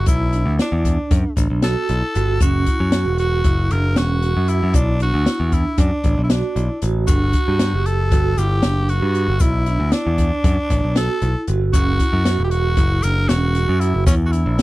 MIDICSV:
0, 0, Header, 1, 5, 480
1, 0, Start_track
1, 0, Key_signature, 2, "minor"
1, 0, Tempo, 518135
1, 71, Time_signature, 9, 3, 24, 8
1, 13545, End_track
2, 0, Start_track
2, 0, Title_t, "Tenor saxophone"
2, 0, Program_c, 0, 66
2, 74, Note_on_c, 0, 64, 84
2, 519, Note_off_c, 0, 64, 0
2, 566, Note_on_c, 0, 62, 72
2, 1233, Note_off_c, 0, 62, 0
2, 1519, Note_on_c, 0, 69, 98
2, 2198, Note_off_c, 0, 69, 0
2, 2243, Note_on_c, 0, 66, 90
2, 2920, Note_off_c, 0, 66, 0
2, 2962, Note_on_c, 0, 66, 90
2, 3442, Note_on_c, 0, 70, 89
2, 3456, Note_off_c, 0, 66, 0
2, 3679, Note_on_c, 0, 66, 92
2, 3693, Note_off_c, 0, 70, 0
2, 4159, Note_on_c, 0, 64, 82
2, 4173, Note_off_c, 0, 66, 0
2, 4402, Note_on_c, 0, 62, 88
2, 4416, Note_off_c, 0, 64, 0
2, 4637, Note_off_c, 0, 62, 0
2, 4655, Note_on_c, 0, 66, 95
2, 5129, Note_on_c, 0, 64, 80
2, 5143, Note_off_c, 0, 66, 0
2, 5361, Note_off_c, 0, 64, 0
2, 5367, Note_on_c, 0, 62, 79
2, 5747, Note_off_c, 0, 62, 0
2, 5779, Note_on_c, 0, 64, 53
2, 5845, Note_on_c, 0, 62, 72
2, 5859, Note_off_c, 0, 64, 0
2, 6311, Note_off_c, 0, 62, 0
2, 6550, Note_on_c, 0, 66, 99
2, 7282, Note_on_c, 0, 69, 100
2, 7296, Note_off_c, 0, 66, 0
2, 7764, Note_on_c, 0, 67, 97
2, 7778, Note_off_c, 0, 69, 0
2, 8238, Note_on_c, 0, 66, 95
2, 8252, Note_off_c, 0, 67, 0
2, 8722, Note_on_c, 0, 64, 91
2, 8736, Note_off_c, 0, 66, 0
2, 9194, Note_on_c, 0, 62, 86
2, 9208, Note_off_c, 0, 64, 0
2, 10155, Note_off_c, 0, 62, 0
2, 10166, Note_on_c, 0, 69, 86
2, 10599, Note_off_c, 0, 69, 0
2, 10869, Note_on_c, 0, 66, 96
2, 11490, Note_off_c, 0, 66, 0
2, 11526, Note_on_c, 0, 67, 65
2, 11583, Note_on_c, 0, 66, 95
2, 11597, Note_off_c, 0, 67, 0
2, 12070, Note_on_c, 0, 70, 101
2, 12084, Note_off_c, 0, 66, 0
2, 12306, Note_on_c, 0, 66, 100
2, 12320, Note_off_c, 0, 70, 0
2, 12786, Note_on_c, 0, 64, 88
2, 12800, Note_off_c, 0, 66, 0
2, 13024, Note_off_c, 0, 64, 0
2, 13030, Note_on_c, 0, 61, 83
2, 13109, Note_off_c, 0, 61, 0
2, 13210, Note_on_c, 0, 66, 63
2, 13268, Note_on_c, 0, 64, 96
2, 13282, Note_off_c, 0, 66, 0
2, 13545, Note_off_c, 0, 64, 0
2, 13545, End_track
3, 0, Start_track
3, 0, Title_t, "Vibraphone"
3, 0, Program_c, 1, 11
3, 62, Note_on_c, 1, 64, 83
3, 266, Note_off_c, 1, 64, 0
3, 300, Note_on_c, 1, 62, 68
3, 505, Note_off_c, 1, 62, 0
3, 541, Note_on_c, 1, 64, 76
3, 745, Note_off_c, 1, 64, 0
3, 786, Note_on_c, 1, 62, 65
3, 1188, Note_off_c, 1, 62, 0
3, 1261, Note_on_c, 1, 62, 65
3, 1465, Note_off_c, 1, 62, 0
3, 1505, Note_on_c, 1, 66, 78
3, 1707, Note_off_c, 1, 66, 0
3, 1989, Note_on_c, 1, 66, 71
3, 2190, Note_off_c, 1, 66, 0
3, 2230, Note_on_c, 1, 61, 83
3, 2431, Note_off_c, 1, 61, 0
3, 2470, Note_on_c, 1, 64, 69
3, 2670, Note_off_c, 1, 64, 0
3, 2716, Note_on_c, 1, 66, 79
3, 2914, Note_off_c, 1, 66, 0
3, 2952, Note_on_c, 1, 66, 65
3, 3152, Note_off_c, 1, 66, 0
3, 3192, Note_on_c, 1, 64, 72
3, 3392, Note_off_c, 1, 64, 0
3, 3432, Note_on_c, 1, 62, 67
3, 3632, Note_off_c, 1, 62, 0
3, 3675, Note_on_c, 1, 61, 79
3, 3874, Note_off_c, 1, 61, 0
3, 3912, Note_on_c, 1, 66, 60
3, 4312, Note_off_c, 1, 66, 0
3, 4391, Note_on_c, 1, 64, 82
3, 4592, Note_off_c, 1, 64, 0
3, 4627, Note_on_c, 1, 62, 72
3, 4830, Note_off_c, 1, 62, 0
3, 4872, Note_on_c, 1, 64, 74
3, 5073, Note_off_c, 1, 64, 0
3, 5115, Note_on_c, 1, 62, 71
3, 5514, Note_off_c, 1, 62, 0
3, 5599, Note_on_c, 1, 62, 68
3, 5797, Note_off_c, 1, 62, 0
3, 5843, Note_on_c, 1, 66, 75
3, 6039, Note_off_c, 1, 66, 0
3, 6081, Note_on_c, 1, 64, 66
3, 6278, Note_off_c, 1, 64, 0
3, 6324, Note_on_c, 1, 66, 66
3, 6520, Note_off_c, 1, 66, 0
3, 6563, Note_on_c, 1, 62, 80
3, 6759, Note_off_c, 1, 62, 0
3, 6808, Note_on_c, 1, 66, 69
3, 7002, Note_off_c, 1, 66, 0
3, 7042, Note_on_c, 1, 67, 80
3, 7239, Note_off_c, 1, 67, 0
3, 7279, Note_on_c, 1, 67, 66
3, 7477, Note_off_c, 1, 67, 0
3, 7516, Note_on_c, 1, 66, 82
3, 7716, Note_off_c, 1, 66, 0
3, 7770, Note_on_c, 1, 64, 69
3, 7963, Note_off_c, 1, 64, 0
3, 7997, Note_on_c, 1, 62, 75
3, 8196, Note_off_c, 1, 62, 0
3, 8239, Note_on_c, 1, 66, 62
3, 8637, Note_off_c, 1, 66, 0
3, 8723, Note_on_c, 1, 64, 82
3, 8920, Note_off_c, 1, 64, 0
3, 8962, Note_on_c, 1, 62, 71
3, 9159, Note_off_c, 1, 62, 0
3, 9196, Note_on_c, 1, 64, 83
3, 9395, Note_off_c, 1, 64, 0
3, 9431, Note_on_c, 1, 62, 71
3, 9832, Note_off_c, 1, 62, 0
3, 9912, Note_on_c, 1, 62, 69
3, 10113, Note_off_c, 1, 62, 0
3, 10148, Note_on_c, 1, 66, 80
3, 10351, Note_off_c, 1, 66, 0
3, 10393, Note_on_c, 1, 64, 66
3, 10593, Note_off_c, 1, 64, 0
3, 10631, Note_on_c, 1, 66, 69
3, 10832, Note_off_c, 1, 66, 0
3, 10870, Note_on_c, 1, 61, 83
3, 11072, Note_off_c, 1, 61, 0
3, 11112, Note_on_c, 1, 64, 72
3, 11313, Note_off_c, 1, 64, 0
3, 11348, Note_on_c, 1, 66, 79
3, 11551, Note_off_c, 1, 66, 0
3, 11594, Note_on_c, 1, 66, 70
3, 11794, Note_off_c, 1, 66, 0
3, 11829, Note_on_c, 1, 64, 74
3, 12031, Note_off_c, 1, 64, 0
3, 12073, Note_on_c, 1, 62, 66
3, 12274, Note_off_c, 1, 62, 0
3, 12550, Note_on_c, 1, 66, 70
3, 12952, Note_off_c, 1, 66, 0
3, 13031, Note_on_c, 1, 64, 86
3, 13232, Note_off_c, 1, 64, 0
3, 13268, Note_on_c, 1, 62, 69
3, 13470, Note_off_c, 1, 62, 0
3, 13508, Note_on_c, 1, 64, 76
3, 13545, Note_off_c, 1, 64, 0
3, 13545, End_track
4, 0, Start_track
4, 0, Title_t, "Picked electric bass"
4, 0, Program_c, 2, 34
4, 67, Note_on_c, 2, 35, 90
4, 406, Note_off_c, 2, 35, 0
4, 422, Note_on_c, 2, 38, 86
4, 539, Note_off_c, 2, 38, 0
4, 668, Note_on_c, 2, 40, 72
4, 895, Note_off_c, 2, 40, 0
4, 1030, Note_on_c, 2, 42, 83
4, 1143, Note_off_c, 2, 42, 0
4, 1268, Note_on_c, 2, 33, 91
4, 1382, Note_off_c, 2, 33, 0
4, 1392, Note_on_c, 2, 35, 78
4, 1616, Note_off_c, 2, 35, 0
4, 1756, Note_on_c, 2, 35, 77
4, 1866, Note_off_c, 2, 35, 0
4, 1999, Note_on_c, 2, 31, 81
4, 2220, Note_off_c, 2, 31, 0
4, 2233, Note_on_c, 2, 30, 93
4, 2457, Note_off_c, 2, 30, 0
4, 2595, Note_on_c, 2, 42, 77
4, 2818, Note_off_c, 2, 42, 0
4, 2831, Note_on_c, 2, 28, 69
4, 3168, Note_off_c, 2, 28, 0
4, 3194, Note_on_c, 2, 30, 82
4, 3418, Note_off_c, 2, 30, 0
4, 3443, Note_on_c, 2, 30, 91
4, 3663, Note_off_c, 2, 30, 0
4, 3684, Note_on_c, 2, 28, 82
4, 4016, Note_off_c, 2, 28, 0
4, 4045, Note_on_c, 2, 42, 80
4, 4264, Note_off_c, 2, 42, 0
4, 4289, Note_on_c, 2, 42, 81
4, 4393, Note_off_c, 2, 42, 0
4, 4397, Note_on_c, 2, 35, 86
4, 4732, Note_off_c, 2, 35, 0
4, 4761, Note_on_c, 2, 38, 78
4, 4870, Note_off_c, 2, 38, 0
4, 5001, Note_on_c, 2, 40, 76
4, 5222, Note_off_c, 2, 40, 0
4, 5357, Note_on_c, 2, 42, 80
4, 5468, Note_off_c, 2, 42, 0
4, 5598, Note_on_c, 2, 33, 88
4, 5708, Note_off_c, 2, 33, 0
4, 5722, Note_on_c, 2, 35, 77
4, 5943, Note_off_c, 2, 35, 0
4, 6077, Note_on_c, 2, 35, 77
4, 6188, Note_off_c, 2, 35, 0
4, 6323, Note_on_c, 2, 33, 82
4, 6544, Note_off_c, 2, 33, 0
4, 6561, Note_on_c, 2, 31, 94
4, 6782, Note_off_c, 2, 31, 0
4, 6929, Note_on_c, 2, 43, 75
4, 7147, Note_off_c, 2, 43, 0
4, 7167, Note_on_c, 2, 30, 69
4, 7498, Note_off_c, 2, 30, 0
4, 7525, Note_on_c, 2, 31, 86
4, 7745, Note_off_c, 2, 31, 0
4, 7759, Note_on_c, 2, 31, 94
4, 7982, Note_off_c, 2, 31, 0
4, 7999, Note_on_c, 2, 30, 81
4, 8334, Note_off_c, 2, 30, 0
4, 8360, Note_on_c, 2, 43, 80
4, 8582, Note_off_c, 2, 43, 0
4, 8598, Note_on_c, 2, 31, 79
4, 8709, Note_off_c, 2, 31, 0
4, 8717, Note_on_c, 2, 35, 90
4, 9053, Note_off_c, 2, 35, 0
4, 9075, Note_on_c, 2, 38, 85
4, 9187, Note_off_c, 2, 38, 0
4, 9325, Note_on_c, 2, 40, 74
4, 9545, Note_off_c, 2, 40, 0
4, 9673, Note_on_c, 2, 42, 82
4, 9786, Note_off_c, 2, 42, 0
4, 9914, Note_on_c, 2, 33, 95
4, 10027, Note_off_c, 2, 33, 0
4, 10038, Note_on_c, 2, 35, 79
4, 10261, Note_off_c, 2, 35, 0
4, 10395, Note_on_c, 2, 35, 80
4, 10507, Note_off_c, 2, 35, 0
4, 10636, Note_on_c, 2, 31, 83
4, 10860, Note_off_c, 2, 31, 0
4, 10877, Note_on_c, 2, 30, 97
4, 11100, Note_off_c, 2, 30, 0
4, 11235, Note_on_c, 2, 42, 82
4, 11459, Note_off_c, 2, 42, 0
4, 11472, Note_on_c, 2, 28, 74
4, 11810, Note_off_c, 2, 28, 0
4, 11834, Note_on_c, 2, 30, 85
4, 12059, Note_off_c, 2, 30, 0
4, 12076, Note_on_c, 2, 30, 92
4, 12300, Note_off_c, 2, 30, 0
4, 12313, Note_on_c, 2, 28, 87
4, 12650, Note_off_c, 2, 28, 0
4, 12680, Note_on_c, 2, 42, 84
4, 12902, Note_off_c, 2, 42, 0
4, 12917, Note_on_c, 2, 30, 80
4, 13026, Note_off_c, 2, 30, 0
4, 13031, Note_on_c, 2, 40, 94
4, 13369, Note_off_c, 2, 40, 0
4, 13395, Note_on_c, 2, 34, 84
4, 13507, Note_off_c, 2, 34, 0
4, 13545, End_track
5, 0, Start_track
5, 0, Title_t, "Drums"
5, 57, Note_on_c, 9, 42, 68
5, 63, Note_on_c, 9, 36, 95
5, 72, Note_on_c, 9, 82, 57
5, 149, Note_off_c, 9, 42, 0
5, 156, Note_off_c, 9, 36, 0
5, 164, Note_off_c, 9, 82, 0
5, 304, Note_on_c, 9, 42, 58
5, 397, Note_off_c, 9, 42, 0
5, 549, Note_on_c, 9, 38, 92
5, 549, Note_on_c, 9, 42, 75
5, 560, Note_on_c, 9, 82, 17
5, 641, Note_off_c, 9, 38, 0
5, 641, Note_off_c, 9, 42, 0
5, 652, Note_off_c, 9, 82, 0
5, 787, Note_on_c, 9, 36, 66
5, 788, Note_on_c, 9, 42, 60
5, 879, Note_off_c, 9, 36, 0
5, 881, Note_off_c, 9, 42, 0
5, 1027, Note_on_c, 9, 38, 30
5, 1027, Note_on_c, 9, 42, 69
5, 1028, Note_on_c, 9, 36, 95
5, 1119, Note_off_c, 9, 38, 0
5, 1119, Note_off_c, 9, 42, 0
5, 1120, Note_off_c, 9, 36, 0
5, 1266, Note_on_c, 9, 38, 33
5, 1266, Note_on_c, 9, 42, 62
5, 1267, Note_on_c, 9, 36, 68
5, 1275, Note_on_c, 9, 82, 45
5, 1359, Note_off_c, 9, 38, 0
5, 1359, Note_off_c, 9, 42, 0
5, 1360, Note_off_c, 9, 36, 0
5, 1368, Note_off_c, 9, 82, 0
5, 1505, Note_on_c, 9, 38, 96
5, 1505, Note_on_c, 9, 42, 79
5, 1597, Note_off_c, 9, 38, 0
5, 1597, Note_off_c, 9, 42, 0
5, 1750, Note_on_c, 9, 42, 57
5, 1842, Note_off_c, 9, 42, 0
5, 1992, Note_on_c, 9, 42, 60
5, 1995, Note_on_c, 9, 82, 16
5, 2085, Note_off_c, 9, 42, 0
5, 2087, Note_off_c, 9, 82, 0
5, 2226, Note_on_c, 9, 42, 75
5, 2230, Note_on_c, 9, 36, 99
5, 2237, Note_on_c, 9, 82, 58
5, 2319, Note_off_c, 9, 42, 0
5, 2322, Note_off_c, 9, 36, 0
5, 2330, Note_off_c, 9, 82, 0
5, 2468, Note_on_c, 9, 42, 62
5, 2469, Note_on_c, 9, 36, 66
5, 2561, Note_off_c, 9, 42, 0
5, 2562, Note_off_c, 9, 36, 0
5, 2704, Note_on_c, 9, 38, 105
5, 2704, Note_on_c, 9, 42, 73
5, 2720, Note_on_c, 9, 82, 17
5, 2797, Note_off_c, 9, 38, 0
5, 2797, Note_off_c, 9, 42, 0
5, 2812, Note_off_c, 9, 82, 0
5, 2947, Note_on_c, 9, 42, 56
5, 3040, Note_off_c, 9, 42, 0
5, 3189, Note_on_c, 9, 42, 73
5, 3190, Note_on_c, 9, 36, 99
5, 3281, Note_off_c, 9, 42, 0
5, 3283, Note_off_c, 9, 36, 0
5, 3433, Note_on_c, 9, 42, 62
5, 3526, Note_off_c, 9, 42, 0
5, 3670, Note_on_c, 9, 38, 98
5, 3670, Note_on_c, 9, 42, 73
5, 3763, Note_off_c, 9, 38, 0
5, 3763, Note_off_c, 9, 42, 0
5, 3914, Note_on_c, 9, 42, 57
5, 4006, Note_off_c, 9, 42, 0
5, 4149, Note_on_c, 9, 42, 60
5, 4164, Note_on_c, 9, 82, 17
5, 4242, Note_off_c, 9, 42, 0
5, 4256, Note_off_c, 9, 82, 0
5, 4388, Note_on_c, 9, 42, 73
5, 4392, Note_on_c, 9, 36, 98
5, 4401, Note_on_c, 9, 82, 61
5, 4480, Note_off_c, 9, 42, 0
5, 4485, Note_off_c, 9, 36, 0
5, 4494, Note_off_c, 9, 82, 0
5, 4632, Note_on_c, 9, 42, 56
5, 4725, Note_off_c, 9, 42, 0
5, 4875, Note_on_c, 9, 38, 97
5, 4875, Note_on_c, 9, 42, 72
5, 4968, Note_off_c, 9, 38, 0
5, 4968, Note_off_c, 9, 42, 0
5, 5114, Note_on_c, 9, 36, 68
5, 5115, Note_on_c, 9, 42, 56
5, 5120, Note_on_c, 9, 82, 18
5, 5206, Note_off_c, 9, 36, 0
5, 5208, Note_off_c, 9, 42, 0
5, 5213, Note_off_c, 9, 82, 0
5, 5352, Note_on_c, 9, 38, 32
5, 5352, Note_on_c, 9, 42, 76
5, 5354, Note_on_c, 9, 36, 96
5, 5362, Note_on_c, 9, 82, 16
5, 5445, Note_off_c, 9, 38, 0
5, 5445, Note_off_c, 9, 42, 0
5, 5447, Note_off_c, 9, 36, 0
5, 5454, Note_off_c, 9, 82, 0
5, 5594, Note_on_c, 9, 42, 62
5, 5595, Note_on_c, 9, 36, 71
5, 5686, Note_off_c, 9, 42, 0
5, 5688, Note_off_c, 9, 36, 0
5, 5834, Note_on_c, 9, 38, 105
5, 5834, Note_on_c, 9, 42, 78
5, 5927, Note_off_c, 9, 38, 0
5, 5927, Note_off_c, 9, 42, 0
5, 6080, Note_on_c, 9, 42, 60
5, 6088, Note_on_c, 9, 82, 16
5, 6173, Note_off_c, 9, 42, 0
5, 6181, Note_off_c, 9, 82, 0
5, 6316, Note_on_c, 9, 42, 62
5, 6330, Note_on_c, 9, 82, 17
5, 6408, Note_off_c, 9, 42, 0
5, 6423, Note_off_c, 9, 82, 0
5, 6555, Note_on_c, 9, 82, 56
5, 6556, Note_on_c, 9, 42, 79
5, 6557, Note_on_c, 9, 36, 99
5, 6648, Note_off_c, 9, 42, 0
5, 6648, Note_off_c, 9, 82, 0
5, 6649, Note_off_c, 9, 36, 0
5, 6791, Note_on_c, 9, 42, 60
5, 6796, Note_on_c, 9, 36, 66
5, 6884, Note_off_c, 9, 42, 0
5, 6889, Note_off_c, 9, 36, 0
5, 7034, Note_on_c, 9, 38, 103
5, 7034, Note_on_c, 9, 42, 78
5, 7050, Note_on_c, 9, 82, 16
5, 7127, Note_off_c, 9, 38, 0
5, 7127, Note_off_c, 9, 42, 0
5, 7143, Note_off_c, 9, 82, 0
5, 7280, Note_on_c, 9, 42, 59
5, 7373, Note_off_c, 9, 42, 0
5, 7519, Note_on_c, 9, 36, 96
5, 7519, Note_on_c, 9, 38, 30
5, 7519, Note_on_c, 9, 42, 74
5, 7612, Note_off_c, 9, 36, 0
5, 7612, Note_off_c, 9, 38, 0
5, 7612, Note_off_c, 9, 42, 0
5, 7761, Note_on_c, 9, 42, 61
5, 7763, Note_on_c, 9, 82, 47
5, 7854, Note_off_c, 9, 42, 0
5, 7855, Note_off_c, 9, 82, 0
5, 7990, Note_on_c, 9, 38, 99
5, 7990, Note_on_c, 9, 42, 69
5, 8083, Note_off_c, 9, 38, 0
5, 8083, Note_off_c, 9, 42, 0
5, 8233, Note_on_c, 9, 42, 51
5, 8325, Note_off_c, 9, 42, 0
5, 8472, Note_on_c, 9, 82, 17
5, 8473, Note_on_c, 9, 42, 54
5, 8565, Note_off_c, 9, 82, 0
5, 8566, Note_off_c, 9, 42, 0
5, 8705, Note_on_c, 9, 82, 53
5, 8712, Note_on_c, 9, 42, 68
5, 8714, Note_on_c, 9, 36, 100
5, 8798, Note_off_c, 9, 82, 0
5, 8805, Note_off_c, 9, 42, 0
5, 8806, Note_off_c, 9, 36, 0
5, 8952, Note_on_c, 9, 42, 53
5, 9044, Note_off_c, 9, 42, 0
5, 9188, Note_on_c, 9, 38, 101
5, 9188, Note_on_c, 9, 42, 78
5, 9191, Note_on_c, 9, 82, 16
5, 9280, Note_off_c, 9, 38, 0
5, 9280, Note_off_c, 9, 42, 0
5, 9284, Note_off_c, 9, 82, 0
5, 9432, Note_on_c, 9, 42, 60
5, 9433, Note_on_c, 9, 36, 69
5, 9524, Note_off_c, 9, 42, 0
5, 9526, Note_off_c, 9, 36, 0
5, 9673, Note_on_c, 9, 36, 94
5, 9673, Note_on_c, 9, 42, 75
5, 9766, Note_off_c, 9, 36, 0
5, 9766, Note_off_c, 9, 42, 0
5, 9912, Note_on_c, 9, 36, 67
5, 9913, Note_on_c, 9, 42, 60
5, 10005, Note_off_c, 9, 36, 0
5, 10005, Note_off_c, 9, 42, 0
5, 10151, Note_on_c, 9, 38, 100
5, 10151, Note_on_c, 9, 42, 74
5, 10244, Note_off_c, 9, 38, 0
5, 10244, Note_off_c, 9, 42, 0
5, 10391, Note_on_c, 9, 42, 59
5, 10484, Note_off_c, 9, 42, 0
5, 10630, Note_on_c, 9, 42, 62
5, 10635, Note_on_c, 9, 82, 16
5, 10723, Note_off_c, 9, 42, 0
5, 10728, Note_off_c, 9, 82, 0
5, 10871, Note_on_c, 9, 36, 98
5, 10871, Note_on_c, 9, 42, 78
5, 10877, Note_on_c, 9, 82, 54
5, 10963, Note_off_c, 9, 42, 0
5, 10964, Note_off_c, 9, 36, 0
5, 10970, Note_off_c, 9, 82, 0
5, 11112, Note_on_c, 9, 36, 68
5, 11113, Note_on_c, 9, 38, 33
5, 11113, Note_on_c, 9, 42, 62
5, 11204, Note_off_c, 9, 36, 0
5, 11206, Note_off_c, 9, 38, 0
5, 11206, Note_off_c, 9, 42, 0
5, 11352, Note_on_c, 9, 38, 99
5, 11352, Note_on_c, 9, 42, 73
5, 11353, Note_on_c, 9, 82, 18
5, 11444, Note_off_c, 9, 38, 0
5, 11444, Note_off_c, 9, 42, 0
5, 11446, Note_off_c, 9, 82, 0
5, 11591, Note_on_c, 9, 42, 57
5, 11683, Note_off_c, 9, 42, 0
5, 11827, Note_on_c, 9, 38, 31
5, 11827, Note_on_c, 9, 42, 71
5, 11829, Note_on_c, 9, 36, 99
5, 11920, Note_off_c, 9, 38, 0
5, 11920, Note_off_c, 9, 42, 0
5, 11922, Note_off_c, 9, 36, 0
5, 12069, Note_on_c, 9, 82, 50
5, 12070, Note_on_c, 9, 42, 62
5, 12161, Note_off_c, 9, 82, 0
5, 12163, Note_off_c, 9, 42, 0
5, 12311, Note_on_c, 9, 38, 99
5, 12311, Note_on_c, 9, 42, 75
5, 12404, Note_off_c, 9, 38, 0
5, 12404, Note_off_c, 9, 42, 0
5, 12551, Note_on_c, 9, 42, 54
5, 12644, Note_off_c, 9, 42, 0
5, 12794, Note_on_c, 9, 42, 60
5, 12794, Note_on_c, 9, 82, 18
5, 12887, Note_off_c, 9, 42, 0
5, 12887, Note_off_c, 9, 82, 0
5, 13031, Note_on_c, 9, 36, 101
5, 13031, Note_on_c, 9, 42, 72
5, 13035, Note_on_c, 9, 82, 62
5, 13123, Note_off_c, 9, 42, 0
5, 13124, Note_off_c, 9, 36, 0
5, 13127, Note_off_c, 9, 82, 0
5, 13274, Note_on_c, 9, 42, 56
5, 13282, Note_on_c, 9, 82, 17
5, 13367, Note_off_c, 9, 42, 0
5, 13375, Note_off_c, 9, 82, 0
5, 13512, Note_on_c, 9, 82, 17
5, 13515, Note_on_c, 9, 38, 100
5, 13515, Note_on_c, 9, 42, 78
5, 13545, Note_off_c, 9, 38, 0
5, 13545, Note_off_c, 9, 42, 0
5, 13545, Note_off_c, 9, 82, 0
5, 13545, End_track
0, 0, End_of_file